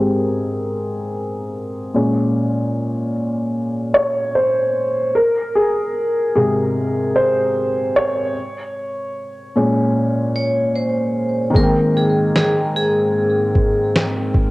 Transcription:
0.00 1.91 G#2 soft
0.00 1.91 C4 soft
0.00 1.91 G4 soft
0.00 1.50 G#4 medium
0.00 1.96 A#4 medium
1.94 3.10 A#2 soft
1.94 3.11 G#3 soft
1.94 3.11 C#4 medium
3.94 4.36 C#5 medium
4.35 5.17 C5 medium
5.15 5.56 A#4 medium
5.55 6.34 G#4 medium
6.35 8.31 G#2 soft
6.35 8.32 C3 soft
6.35 8.31 G4 soft
6.35 7.11 G#4 medium
7.16 7.91 C5 medium
7.96 10.71 C#5 medium
9.56 11.51 A#2 soft
9.56 11.51 G#3 soft
9.56 11.52 C#4 medium
10.36 10.76 C#5 medium
10.76 11.58 C5 medium
11.50 14.51 D#3 medium
11.50 14.51 G#3 medium
11.55 14.51 G#2 medium
11.55 14.51 G#3 medium
11.55 14.51 A#3 medium
11.55 14.51 C4 medium
11.55 14.51 A#4 medium
11.55 11.97 A#4 loud
11.55 kick loud
11.60 14.51 C4 medium
11.60 14.51 G5 medium
11.97 12.35 G#4 medium
12.36 12.54 G#4 medium
12.36 snare loud
12.76 13.91 G#4 medium
13.55 kick medium
13.96 snare loud
14.34 kick medium

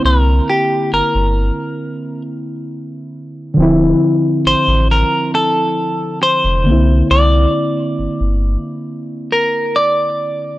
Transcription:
0.00 3.07 D3 medium
0.00 3.09 A#3 medium
0.00 3.10 C4 medium
0.00 3.12 E4 medium
0.05 0.40 C2 loud
0.05 0.50 A#4 medium
0.50 0.90 G4 medium
0.93 1.01 G1 soft
0.93 2.21 A#4 medium
1.15 1.51 G1 medium
3.54 3.93 D1 loud
3.54 6.60 D3 medium
3.54 6.62 F3 medium
3.59 6.63 C4 medium
3.59 6.64 E4 medium
4.46 4.54 A1 soft
4.46 4.87 C5 medium
4.68 5.03 A1 medium
4.91 5.31 A#4 medium
5.35 6.18 A4 medium
6.23 7.10 C5 medium
6.44 6.68 F1 medium
6.63 7.02 C2 medium
6.63 10.13 D3 medium
6.63 10.15 A#3 medium
6.69 10.16 C4 medium
6.69 10.18 E4 medium
7.10 7.46 C2 loud
7.10 9.71 D5 medium
7.99 8.07 G1 soft
8.21 8.56 G1 medium
9.32 9.77 A#4 medium
9.76 10.59 D5 medium

